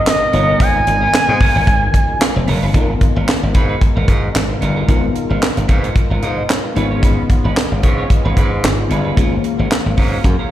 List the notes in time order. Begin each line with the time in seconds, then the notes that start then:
Already playing: B2 G#3 B3 D#4 F4 A#4
0.06 D#5, snare, clap, closed hi-hat
0.21 muted clean electric guitar stroke
0.33 G1 B3 D#4 F4 A#4 C#5, closed hi-hat
0.48 B3 F4 A#4
0.60 G#1 B3 F4 A#4 G#5, kick, closed hi-hat
0.75 muted clean electric guitar stroke
0.87 G#1, muted clean electric guitar stroke, closed hi-hat
1.01 B3 F4 A#4
1.13 muted clean electric guitar stroke, muted slap bass stroke, snare, clap, closed hi-hat
1.28 G#2, muted clean electric guitar stroke
1.40 B3 F4 A#4, kick, open hi-hat
1.55 G#1 B3 F4 A#4
1.67 G#1, muted clean electric guitar stroke, kick, closed hi-hat
1.82 muted clean electric guitar stroke
1.94 kick, closed hi-hat
2.09 muted clean electric guitar stroke
2.21 snare, clap, closed hi-hat
2.36 F1, muted clean electric guitar stroke
2.47 F#1 B3 F4 A#4, open hi-hat
2.62 G1 B3 F4 B4
2.74 G#1 B2 G#3 B3 D#4 F4 A4 A#4, kick, closed hi-hat
2.82 A#4
2.89 muted clean electric guitar stroke
3.01 muted clean electric guitar stroke, kick, closed hi-hat
3.16 G#1 B3 F4 A#4
3.28 muted clean electric guitar stroke, snare, clap, closed hi-hat
3.43 G#1, muted clean electric guitar stroke
3.54 G#2 B3 F4 B4, kick, closed hi-hat
3.69 B3 F4 B4
3.81 muted clean electric guitar stroke, kick, closed hi-hat
3.96 G#1 B3 F4 A#4
4.08 G#2 B3 F4 A#4, kick, closed hi-hat
4.23 muted clean electric guitar stroke
4.35 G#1, snare, clap, closed hi-hat
4.50 muted clean electric guitar stroke
4.61 G1 B3 F4 A#4, closed hi-hat
4.76 B3 F4 A#4
4.88 G#1 B3 D#4 F4 A#4, kick, closed hi-hat
5.03 muted clean electric guitar stroke
5.15 muted clean electric guitar stroke, closed hi-hat
5.30 G#1 B3 F4 A#4
5.42 muted clean electric guitar stroke, snare, clap, closed hi-hat
5.57 G#1, muted clean electric guitar stroke, closed hi-hat
5.68 G#2 B3 F4 A#4, kick, closed hi-hat
5.83 B3 F4 A#4, closed hi-hat
5.96 muted clean electric guitar stroke, kick, closed hi-hat
6.10 G#1 B3 F4 A#4
6.22 G#2 B3 F4 A#4 F5, closed hi-hat
6.37 D#5, muted clean electric guitar stroke
6.49 C#5, snare, clap, closed hi-hat
6.64 B4, muted clean electric guitar stroke
6.75 G#1 C#3 G#3 B3 C#4 D#4 F4 G#4 B4, closed hi-hat
6.91 C#4 F4 C#5
7.02 C#4 F4 B4, kick, closed hi-hat
7.18 muted clean electric guitar stroke
7.29 muted clean electric guitar stroke, kick, closed hi-hat
7.44 G#1 C#4 F4 B4
7.56 muted clean electric guitar stroke, snare, clap, closed hi-hat
7.71 G#1, muted clean electric guitar stroke
7.83 G#2 C#4 F4 C#5, kick, closed hi-hat
7.98 C#4 F4 C#5
8.10 muted clean electric guitar stroke, kick, closed hi-hat
8.25 G#1 C#4 F4 B4
8.36 G#2 C#4 F4 B4, kick, closed hi-hat
8.51 muted clean electric guitar stroke
8.63 G#1 B3 D#4 F4 G#4, muted clean electric guitar stroke, snare, clap, closed hi-hat
8.78 muted clean electric guitar stroke
8.90 G1 C#4 F4 B4, closed hi-hat
9.05 C#4 F4 B4
9.16 G#1 F#3 A#3 C#4 F4 G#4 A#4, kick, closed hi-hat
9.32 muted clean electric guitar stroke
9.44 muted clean electric guitar stroke, closed hi-hat
9.59 G#1 C#4 F4 A#4
9.71 muted clean electric guitar stroke, snare, clap, closed hi-hat
9.85 G#1, muted clean electric guitar stroke
9.97 G#2 C#4 F4 A#4, kick, open hi-hat
10.12 C#4 F4 A#4
10.24 F#2, muted clean electric guitar stroke, kick, closed hi-hat
10.39 C#4 F4 A#4